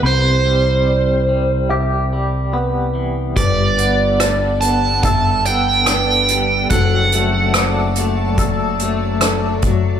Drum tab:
HH |--------|xxxxxxxx|xxxxxxxx|
SD |--------|--r---r-|--r---r-|
BD |--------|o---o---|o---o--o|